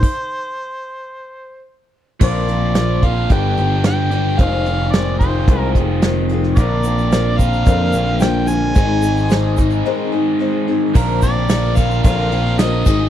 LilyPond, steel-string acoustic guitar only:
\new Staff \with { instrumentName = "Steel-string acoustic guitar" } { \time 4/4 \key bes \mixolydian \tempo 4 = 110 r1 | <bes, d f bes c' f'>8 <f bes c' f'>8 <f bes c' f'>8 <f bes c' f'>8 <g, d g b d' g'>8 <g b d' g'>8 <g b d' g'>8 <g b d' g'>8 | <f, c ees aes c' f'>8 <ees aes c' f'>8 <ees aes c' f'>8 <ees aes c' f'>8 <f, c ees aes c' f'>8 <ees aes c' f'>8 <ees aes c' f'>8 <ees aes c' f'>8 | <bes, d f bes c' f'>8 <f bes c' f'>8 <f bes c' f'>8 <f bes c' f'>8 <bes, d f bes c' f'>8 <f bes c' f'>8 <f bes c' f'>8 <f bes c' f'>8 |
<aes, ees aes c' ees' aes'>8 <aes c' ees' aes'>8 <aes c' ees' aes'>8 <aes c' ees' aes'>8 <aes, ees aes c' ees' aes'>8 <aes c' ees' aes'>8 <aes c' ees' aes'>8 <aes c' ees' aes'>8 | <bes, d f bes c' f'>8 <f bes c' f'>8 <f bes c' f'>8 <f bes c' f'>8 <bes, d f bes c' f'>8 <f bes c' f'>8 <f bes c' f'>8 <aes c' ees' aes'>8 | }